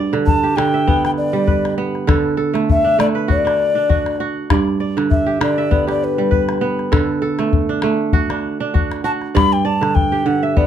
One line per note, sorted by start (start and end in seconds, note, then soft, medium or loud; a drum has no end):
0.00 2.01 G2 medium
0.00 0.15 A3 medium
0.00 0.59 D4 medium
0.00 0.49 F#4 medium
0.00 0.43 G4 medium
0.00 0.55 A4 medium
0.00 0.29 B4 medium
0.00 0.11 C5 medium
0.00 1.08 D5 medium
0.13 0.56 D3 medium
0.13 calabash click soft
0.26 0.58 A5 medium
0.26 calabash thump medium
0.43 1.84 G4 medium
0.56 2.06 D3 medium
0.56 1.03 G5 medium
0.56 calabash click medium
0.74 1.77 E5 medium
0.87 1.77 B3 medium
0.87 calabash thump medium
1.05 1.11 G5 medium
1.05 calabash click soft
1.18 1.74 D5 medium
1.33 2.13 G3 medium
1.47 2.70 B4 medium
1.47 calabash thump medium
1.65 calabash click soft
1.78 3.64 B3 medium
1.95 calabash click soft
2.07 4.41 D3 medium
2.07 2.37 A4 medium
2.07 calabash thump medium
2.07 calabash click medium
2.37 3.69 A4 medium
2.54 2.98 A3 medium
2.54 calabash click soft
2.70 2.98 E5 medium
2.70 calabash thump medium
2.84 3.44 D4 medium
2.99 4.98 A3 medium
2.99 3.07 D5 medium
2.99 calabash click medium
3.15 4.38 B4 medium
3.28 3.89 F#4 medium
3.28 4.17 D5 medium
3.28 calabash thump medium
3.45 3.75 D4 medium
3.45 calabash click soft
3.75 5.43 D4 medium
3.89 4.20 F#4 medium
3.89 calabash thump medium
4.06 calabash click soft
4.20 4.57 F#4 medium
4.50 6.84 G2 medium
4.50 4.80 D5 medium
4.50 calabash thump medium
4.50 calabash click medium
4.80 5.91 D5 medium
4.97 5.39 D3 medium
4.97 calabash click soft
5.11 5.39 E5 medium
5.11 calabash thump medium
5.26 5.87 G4 medium
5.41 6.91 D3 medium
5.41 5.86 D5 medium
5.41 calabash click medium
5.58 6.61 E5 medium
5.71 6.61 B3 medium
5.71 calabash thump medium
5.87 7.28 G4 medium
5.87 6.06 D5 medium
5.87 calabash click soft
6.04 6.64 B4 medium
6.18 6.98 G3 medium
6.31 7.54 B4 medium
6.31 calabash thump medium
6.49 calabash click soft
6.61 8.48 B3 medium
6.79 calabash click soft
6.92 9.26 D3 medium
6.92 7.21 A4 medium
6.92 calabash thump medium
6.92 calabash click medium
7.22 8.54 A4 medium
7.39 7.83 A3 medium
7.39 calabash click soft
7.53 calabash thump medium
7.69 8.30 D4 medium
7.82 9.83 A3 medium
7.82 calabash click medium
8.13 8.73 F#4 medium
8.13 calabash thump medium
8.30 8.60 D4 medium
8.30 calabash click soft
8.60 10.28 D4 medium
8.74 9.04 F#4 medium
8.74 calabash thump medium
8.91 calabash click soft
9.04 9.41 F#4 medium
9.04 9.11 A5 medium
9.22 calabash click soft
9.35 10.67 G2 medium
9.35 9.64 D5 medium
9.35 9.54 B5 loud
9.35 calabash thump medium
9.35 calabash click medium
9.53 9.67 G5 medium
9.65 10.67 D5 medium
9.65 9.96 A5 medium
9.81 10.24 D3 medium
9.81 calabash click soft
9.95 10.28 G5 medium
9.95 calabash thump medium
10.12 10.67 G4 medium
10.26 10.67 D3 medium
10.26 10.45 F#5 medium
10.43 10.67 E5 medium
10.43 10.59 E5 medium
10.57 10.67 B3 medium
10.57 10.67 D5 medium
10.57 calabash thump medium